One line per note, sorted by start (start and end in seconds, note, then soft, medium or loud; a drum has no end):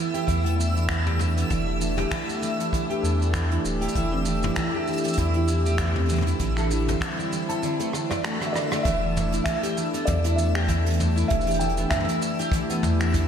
0.00 0.13 E3 medium
0.00 6.40 E3 medium
0.00 6.40 A3 medium
0.00 0.46 E4 medium
0.00 8.84 E5 medium
0.00 8.85 E6 medium
0.14 0.26 G4 medium
0.14 closed hi-hat soft
0.14 shaker soft
0.27 1.45 E2 medium
0.27 0.43 E3 loud
0.27 kick medium
0.27 closed hi-hat medium
0.27 shaker medium
0.43 0.57 B3 medium
0.43 6.90 D4 medium
0.43 closed hi-hat medium
0.58 0.74 E3 medium
0.58 shaker medium
0.75 0.88 E4 medium
0.75 shaker soft
0.89 1.04 E3 medium
0.89 finger snap medium
0.89 kick loud
0.89 closed hi-hat medium
0.89 shaker medium
1.06 1.19 G4 medium
1.06 closed hi-hat soft
1.06 mid tom medium
1.19 1.35 E3 medium
1.19 mid tom medium
1.19 shaker medium
1.26 6.90 G4 medium
1.36 1.49 B3 medium
1.36 closed hi-hat soft
1.36 shaker medium
1.50 2.06 E1 loud
1.50 1.66 E3 medium
1.50 kick loud
1.50 closed hi-hat medium
1.50 shaker medium
1.67 1.79 E4 medium
1.80 1.96 E3 medium
1.80 shaker medium
1.97 2.10 G4 medium
1.97 closed hi-hat medium
1.97 mid tom medium
2.10 2.27 E3 medium
2.10 finger snap medium
2.10 kick medium
2.10 closed hi-hat medium
2.10 shaker soft
2.28 2.41 B3 medium
2.28 shaker soft
2.41 2.57 E3 medium
2.41 shaker medium
2.59 2.72 E4 medium
2.59 closed hi-hat medium
2.59 shaker soft
2.73 2.88 E3 medium
2.73 kick medium
2.73 closed hi-hat medium
2.73 shaker medium
2.90 3.03 G4 medium
2.90 closed hi-hat soft
3.03 3.59 E2 medium
3.03 3.19 E3 medium
3.03 shaker medium
3.20 3.32 B3 medium
3.20 shaker soft
3.33 3.49 E3 medium
3.33 finger snap medium
3.33 kick medium
3.33 closed hi-hat medium
3.33 shaker medium
3.51 3.63 E4 medium
3.51 closed hi-hat soft
3.64 3.88 D1 medium
3.64 3.80 E3 medium
3.64 shaker medium
3.81 3.94 G4 medium
3.81 closed hi-hat medium
3.88 closed hi-hat soft
3.88 shaker medium
3.95 4.51 E1 medium
3.95 4.11 E3 medium
3.95 kick medium
3.95 closed hi-hat medium
3.95 shaker medium
4.04 closed hi-hat soft
4.12 4.24 C4 medium
4.25 4.42 E3 medium
4.25 shaker medium
4.43 4.56 E4 medium
4.43 mid tom medium
4.43 shaker soft
4.56 4.72 E3 medium
4.56 finger snap medium
4.56 kick medium
4.56 closed hi-hat medium
4.56 shaker medium
4.74 4.87 G4 medium
4.87 5.03 E3 medium
4.87 shaker soft
4.93 shaker soft
4.98 shaker soft
5.04 5.17 C4 medium
5.04 closed hi-hat medium
5.04 shaker medium
5.08 shaker medium
5.13 closed hi-hat medium
5.13 shaker medium
5.18 6.34 E2 medium
5.18 5.33 E3 medium
5.18 kick medium
5.18 shaker medium
5.34 5.47 E4 medium
5.34 closed hi-hat soft
5.48 5.64 E3 medium
5.48 shaker medium
5.66 5.78 G4 medium
5.66 shaker medium
5.78 5.95 E3 loud
5.78 finger snap medium
5.78 kick medium
5.78 closed hi-hat medium
5.78 shaker medium
5.96 6.08 C4 medium
5.96 closed hi-hat soft
5.96 mid tom medium
5.99 closed hi-hat soft
6.05 closed hi-hat soft
6.05 mid tom soft
6.05 shaker medium
6.09 6.25 E3 medium
6.09 closed hi-hat soft
6.14 closed hi-hat soft
6.14 mid tom soft
6.18 closed hi-hat soft
6.18 mid tom medium
6.22 mid tom medium
6.27 6.39 E4 medium
6.27 closed hi-hat medium
6.27 shaker medium
6.39 6.96 A1 medium
6.39 7.63 D3 medium
6.39 6.56 E3 medium
6.39 kick loud
6.39 closed hi-hat medium
6.39 shaker medium
6.57 6.71 A4 medium
6.57 finger snap soft
6.57 shaker soft
6.71 6.87 E3 medium
6.71 shaker medium
6.88 7.00 C4 medium
6.88 closed hi-hat medium
6.88 mid tom medium
6.88 shaker soft
6.96 7.63 G3 medium
6.96 8.13 C4 medium
6.96 8.13 E4 medium
7.01 7.17 E3 medium
7.01 finger snap medium
7.01 kick medium
7.01 closed hi-hat medium
7.01 shaker soft
7.19 7.31 E4 medium
7.19 shaker soft
7.32 7.48 E3 medium
7.32 shaker medium
7.49 7.61 A4 medium
7.49 closed hi-hat medium
7.49 shaker soft
7.62 7.78 D3 loud
7.62 13.28 E3 medium
7.62 closed hi-hat medium
7.62 shaker medium
7.79 7.92 A3 medium
7.79 closed hi-hat soft
7.79 shaker medium
7.93 8.09 D3 medium
7.93 cross-stick medium
7.93 shaker medium
8.10 8.22 D5 medium
8.10 cross-stick medium
8.10 closed hi-hat soft
8.10 mid tom medium
8.10 shaker soft
8.18 13.28 A3 medium
8.18 13.28 D4 medium
8.18 8.85 F#4 medium
8.23 8.40 A3 medium
8.23 finger snap loud
8.23 cross-stick medium
8.23 closed hi-hat medium
8.23 shaker soft
8.40 8.53 D3 medium
8.40 cross-stick medium
8.40 closed hi-hat soft
8.40 shaker soft
8.46 8.54 E5 medium
8.53 8.70 D3 loud
8.53 8.60 D5 medium
8.53 cross-stick medium
8.53 shaker medium
8.71 8.84 D3 medium
8.71 cross-stick medium
8.71 closed hi-hat medium
8.71 shaker soft
8.83 9.40 E1 medium
8.83 9.01 E3 loud
8.83 9.42 E5 loud
8.83 13.28 E5 medium
8.83 13.28 E6 medium
8.83 kick loud
8.83 closed hi-hat medium
8.87 shaker medium
9.02 9.14 B3 medium
9.15 9.31 E3 medium
9.15 mid tom medium
9.15 shaker medium
9.32 9.46 E4 medium
9.32 closed hi-hat soft
9.32 shaker medium
9.44 9.62 E3 medium
9.44 10.02 E5 loud
9.44 finger snap medium
9.44 kick loud
9.44 closed hi-hat medium
9.44 shaker medium
9.63 9.76 G4 medium
9.63 closed hi-hat medium
9.63 shaker soft
9.77 9.92 E3 medium
9.77 shaker medium
9.93 10.06 B3 medium
9.93 closed hi-hat soft
9.93 shaker soft
10.05 11.24 E2 medium
10.05 10.23 E3 medium
10.05 10.38 D5 medium
10.05 kick loud
10.05 closed hi-hat medium
10.05 mid tom medium
10.05 shaker medium
10.24 10.37 E4 medium
10.24 closed hi-hat medium
10.24 shaker soft
10.36 10.54 E3 medium
10.36 11.27 E5 medium
10.36 shaker medium
10.55 10.67 G4 medium
10.55 finger snap medium
10.55 shaker soft
10.68 10.84 E3 medium
10.68 kick loud
10.68 closed hi-hat medium
10.68 shaker medium
10.85 10.98 B3 medium
10.85 closed hi-hat medium
10.90 closed hi-hat soft
10.93 closed hi-hat soft
10.97 11.14 E3 medium
10.97 13.28 G4 medium
10.97 closed hi-hat soft
10.97 mid tom medium
10.97 shaker medium
11.16 11.29 E4 medium
11.16 shaker medium
11.28 11.86 E1 loud
11.28 11.45 E3 medium
11.28 11.57 E5 loud
11.28 kick loud
11.28 closed hi-hat medium
11.28 shaker soft
11.41 shaker soft
11.47 11.60 G4 medium
11.47 closed hi-hat medium
11.51 closed hi-hat soft
11.51 shaker soft
11.59 11.76 E3 medium
11.59 11.92 G5 medium
11.59 closed hi-hat soft
11.59 shaker medium
11.69 closed hi-hat soft
11.77 11.90 B3 medium
11.77 closed hi-hat soft
11.77 shaker soft
11.90 12.07 E3 medium
11.90 12.78 E5 loud
11.90 finger snap medium
11.90 kick loud
11.90 closed hi-hat medium
11.90 mid tom medium
11.90 shaker medium
11.96 mid tom medium
12.00 mid tom soft
12.05 12.21 E4 medium
12.05 mid tom soft
12.09 closed hi-hat medium
12.09 shaker medium
12.22 12.37 E3 medium
12.22 shaker medium
12.39 12.51 G4 loud
12.39 closed hi-hat soft
12.39 shaker medium
12.52 12.68 E3 loud
12.52 kick loud
12.52 closed hi-hat medium
12.52 shaker medium
12.69 12.82 B3 medium
12.69 closed hi-hat medium
12.69 shaker medium
12.83 13.28 E2 medium
12.83 12.98 E3 medium
12.83 mid tom medium
12.83 shaker medium
12.99 13.13 E4 medium
12.99 finger snap medium
12.99 shaker medium
13.12 13.28 E3 medium
13.12 kick loud
13.12 closed hi-hat medium
13.12 shaker medium